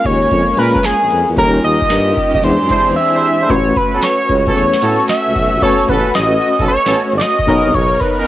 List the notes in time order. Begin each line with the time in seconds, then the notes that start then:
Already playing: G#3 A#3 C#4 F4 A#4
0.05 D#2 C#5, kick, open hi-hat
0.22 closed hi-hat
0.31 F2, kick, closed hi-hat
0.57 A#2 G#3 C#4 F4 G#4 A#4 B4, closed hi-hat
0.75 kick, closed hi-hat
0.84 G#4, snare, clap, closed hi-hat
1.02 A#1
1.11 F2, closed hi-hat
1.28 E2, closed hi-hat
1.36 D#2 D#3 G3 C#4 D#4 F4 G4 A4 A#4, kick, closed hi-hat
1.45 A#4
1.64 D#2 D#5, closed hi-hat
1.82 kick, closed hi-hat
1.90 G2, snare, clap, closed hi-hat
2.17 kick, open hi-hat
2.35 D#2 D#5, kick, closed hi-hat
2.42 E2 E3 G#3 C4 D4 E4 G#4 C5, closed hi-hat
2.62 F#2
2.70 D4 E4 G#4 C5, kick, clap, closed hi-hat
2.88 E2, closed hi-hat
2.96 E5
3.14 D4 E4 G#4 C5
3.41 D4 E4 G#4 C5
3.48 A1 A3 C#4 F#4 B4 C#5, kick, closed hi-hat
3.76 B4, kick, closed hi-hat, tambourine
3.94 C#2 B3 C#4 F#4 A4, closed hi-hat
4.02 C#5, snare, clap, closed hi-hat, tambourine
4.29 C#2, kick, closed hi-hat, tambourine
4.47 B3 C#4 F#4 A4, kick, closed hi-hat
4.56 E2 C#5, closed hi-hat, tambourine
4.73 snare
4.82 A2 B3 C#4 F#4 A4, clap, closed hi-hat, tambourine
5.00 closed hi-hat
5.09 E5, snare, clap, closed hi-hat, tambourine
5.27 C#2
5.36 B1, kick, open hi-hat, tambourine
5.53 A#1, closed hi-hat
5.61 A3 B3 C#4 F#4 A4 B4 C#5, kick, closed hi-hat
5.88 A1 B3 C#4 F#4 A4 B4, kick, closed hi-hat, tambourine
6.06 closed hi-hat
6.15 A1 D#5, snare, clap, closed hi-hat, tambourine
6.42 closed hi-hat, tambourine
6.59 B1 B3 C#4 F#4 A4, kick, closed hi-hat
6.68 C#5, closed hi-hat, tambourine
6.86 A1 B3 C#4 F#4 A4, snare
6.94 clap, closed hi-hat, tambourine
7.12 G#1, closed hi-hat
7.18 D5 D#5, snare, clap, closed hi-hat, tambourine
7.39 kick
7.47 B1 B3 C#4 D#4 A#4 C#5, kick, open hi-hat, tambourine
7.66 C2, closed hi-hat
7.74 B1 C#5, kick, closed hi-hat
8.00 B4, kick, closed hi-hat, tambourine
8.18 D#2 B3 C#4 D#4 A#4, closed hi-hat